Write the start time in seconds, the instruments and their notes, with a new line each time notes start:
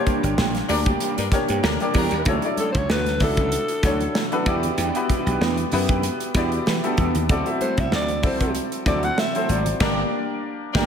Already playing: grand piano A#3 D4 G4 A#4 C5
0.00 grand piano C#5
0.06 clean electric guitar G3 A#3 D4 G4, kick, closed hi-hat
0.23 slap bass G1, clean electric guitar G3 A#3 D4 G4, closed hi-hat
0.38 slap bass A#1, clean electric guitar G3 A#3 D4 G4, snare
0.55 muted clean electric guitar stroke, snare, closed hi-hat
0.68 slap bass D2, horn section G3 D4 A#4, grand piano A#3 D4 G4 A#4 D5, muted clean electric guitar stroke, open hi-hat
0.86 clean electric guitar G3 A#3 D4 G4, kick, closed hi-hat
1.00 clean electric guitar G3 A#3 D4 G4, closed hi-hat
1.17 slap bass G2, horn section G3 D4 A#4, muted clean electric guitar stroke, closed hi-hat
1.32 grand piano A#3 D4 G4 A#4 C#5, muted clean electric guitar stroke, kick, snare, closed hi-hat
1.49 slap bass G2, clean electric guitar G3 A#3 D4 G4, closed hi-hat
1.63 slap bass D2, horn section G3 D4 A#4, muted clean electric guitar stroke, snare
1.80 clean electric guitar G3 A#3 D4 G4, grand piano A#3 D4 G4 A#4 D5, closed hi-hat
1.94 slap bass E2, horn section F#3 D4 A#4, clean electric guitar G3 A#3 D4 G4, kick, open hi-hat
2.11 slap bass D#2, muted clean electric guitar stroke, closed hi-hat
2.25 slap bass D2, clean electric guitar F#3 A3 C#4 F#4, grand piano D4 E4 F#4 A4 C#5, kick, closed hi-hat
2.42 grand piano D4 E4 F#4 A4 D5, closed hi-hat
2.57 clean electric guitar F#3 A3 C#4 F#4, alto saxophone A4, closed hi-hat, muted conga, high conga
2.72 slap bass C#2, clean electric guitar A3 C#4 F#4, alto saxophone C5, kick, closed hi-hat
2.77 clean electric guitar F#3, alto saxophone C#5
2.89 slap bass D2, clean electric guitar F#3 A3 C#4 F#4, alto saxophone B4, snare, muted conga
3.06 muted clean electric guitar stroke, snare, closed hi-hat, high conga
3.20 slap bass C#2, grand piano D4 E4 F#4 A4 E5, muted clean electric guitar stroke, kick, snare, open hi-hat, muted conga, low conga
3.24 alto saxophone A4
3.37 clean electric guitar F#3 A3 C#4 F#4, kick, closed hi-hat
3.52 muted clean electric guitar stroke, closed hi-hat, muted conga, high conga
3.68 muted clean electric guitar stroke, closed hi-hat
3.83 slap bass D2, clean electric guitar F#3 A3 C#4 F#4, grand piano D4 E4 F#4 A4 C#5, kick, snare, closed hi-hat, muted conga, high conga
4.01 muted clean electric guitar stroke, closed hi-hat
4.15 muted clean electric guitar stroke, snare, muted conga
4.32 clean electric guitar F#3 A3 C#4 F#4, grand piano D4 E4 F#4 A4 B4, closed hi-hat
4.46 slap bass E2, clean electric guitar E3 B3 D4 G4, grand piano B3 E4 F#4 G4 D5, kick, closed hi-hat, muted conga, high conga
4.63 muted clean electric guitar stroke, closed hi-hat, low conga
4.77 slap bass E2, clean electric guitar E3 B3 D4 G4, closed hi-hat, muted conga
4.95 grand piano B3 E4 F#4 G4 B4, closed hi-hat
5.10 clean electric guitar E3 B3 D4 G4, kick, closed hi-hat, high conga
5.26 slap bass B1, clean electric guitar E3 B3 D4 G4, closed hi-hat
5.41 slap bass E2, clean electric guitar E3 B3 D4 G4, snare
5.57 muted clean electric guitar stroke, closed hi-hat, high conga
5.72 slap bass F#2, grand piano B3 E4 F#4 G4 B4, muted clean electric guitar stroke, open hi-hat, low conga
5.89 clean electric guitar E3 B3 D4 G4, kick, closed hi-hat
6.02 muted clean electric guitar stroke, closed hi-hat, high conga
6.20 muted clean electric guitar stroke, closed hi-hat
6.34 slap bass E2, clean electric guitar E3 B3 D4 G4, grand piano B3 E4 F#4 G4 D5, kick, snare, closed hi-hat, muted conga, high conga
6.52 muted clean electric guitar stroke, closed hi-hat
6.66 slap bass E3, muted clean electric guitar stroke, snare, muted conga
6.83 clean electric guitar E3 B3 D4 G4, grand piano B3 E4 F#4 G4 A4, closed hi-hat
6.97 slap bass E2, clean electric guitar E3 B3 D4 G4, kick, closed hi-hat, muted conga, high conga
7.15 slap bass D#2, muted clean electric guitar stroke, closed hi-hat, low conga
7.29 slap bass D2, clean electric guitar F#3 A3 C4 F#4, grand piano C4 E4 F#4 A4 D5, kick, closed hi-hat, muted conga
7.46 grand piano C4 E4 F#4 A4 E5, closed hi-hat
7.61 clean electric guitar F#3 A3 C4 F#4, alto saxophone C5, closed hi-hat, muted conga, high conga
7.77 slap bass C2, clean electric guitar F#3 A3 C4 F#4, alto saxophone E5, kick, closed hi-hat
7.92 slap bass D2, clean electric guitar F#3 A3 C4 F#4, alto saxophone D5, snare
8.08 muted clean electric guitar stroke, closed hi-hat, high conga
8.23 slap bass C2, grand piano C4 E4 F#4 A4 D5, muted clean electric guitar stroke, kick, open hi-hat, muted conga, low conga
8.27 alto saxophone C5
8.40 clean electric guitar F#3 A3 C4 F#4, kick, closed hi-hat
8.55 muted clean electric guitar stroke, closed hi-hat, muted conga, high conga
8.72 muted clean electric guitar stroke, closed hi-hat
8.86 slap bass D2, clean electric guitar F#3 A3 C4 F#4, grand piano C4 E4 F#4 A4 D5, alto saxophone D5, kick, snare, closed hi-hat, muted conga, high conga
9.03 alto saxophone F#5, muted clean electric guitar stroke, closed hi-hat
9.18 alto saxophone E5, muted clean electric guitar stroke, snare, muted conga
9.35 clean electric guitar F#3 A3 C4 F#4, grand piano C4 E4 F#4 A4 C5, closed hi-hat
9.49 slap bass G#1, clean electric guitar F#3 A3 C4 F#4, alto saxophone D5, closed hi-hat, muted conga, high conga
9.66 muted clean electric guitar stroke, closed hi-hat, low conga
9.80 slap bass G1, clean electric guitar G3 A#3 D4 G4, horn section G3 D4 A#4, grand piano A#3 D4 G4 A#4 D5, kick, snare, crash
10.73 slap bass G1, horn section G3 D4 A#4, clean electric guitar G3 A#3 D4 G4, grand piano A#3 D4 G4, kick, snare